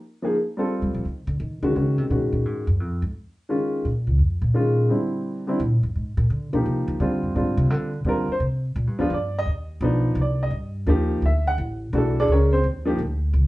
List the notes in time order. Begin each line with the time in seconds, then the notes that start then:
0.22 F3 A#3 D#4 G#4
0.57 G3 C4 F4 A4
0.82 G3
0.94 F3
1.05 D#3
1.27 D3
1.40 D#3
1.63 D3 D#3 G#3 C#4 F#4
1.75 C#3 D#3 G#3 C#4 F#4
1.98 C3
2.10 B2 D#3 G#3 C#4 F#4
2.33 A#2
2.45 G#2
2.67 F#2
2.80 F2
3.02 G#2
3.49 D#3 G#3 C#4 F4
3.85 A#2
4.07 C#2
4.19 F2
4.42 A#2
4.54 D#3 G#3 C#4 F4
4.89 D3 G3 C4 E4
5.47 D3 G3 C4 E4
5.60 A#2
5.83 G2
5.96 G#2
6.17 A#2
6.30 D3
6.53 B2 F3 A#3 D#4 G4
6.66 C3
6.88 D#3
7.00 D3 G3 C4 F4
7.23 F2
7.35 G#2 D3 G3 C4 F4
7.57 C3
7.70 D3
8.05 D3 D#3 G3 C4 F4
8.09 A#4
8.28 muted upright bass stroke
8.32 C5
8.40 C3
8.76 A#2
8.87 G2
8.99 D#2 F3 B3 D4 F4
9.10 G2
9.14 D5
9.39 D#5
9.46 D#2
9.81 B1 F3 B3 D4 D#4
10.15 C2
10.21 D5
10.43 D#5
10.50 G2
10.86 D#2 F3 A#3 D#4 G4
11.22 D2 E5
11.47 F#5
11.58 A1
11.93 B1 E3 A3 D4 F#4
11.97 A3 D4 A4
12.20 D4 G#4 A4 D5
12.28 C#2 C#5
12.32 C#4 G#4 A#4
12.53 C4 C5
12.64 D#2
12.85 F3 A#3 D#4 G4
12.98 D2
13.34 C#2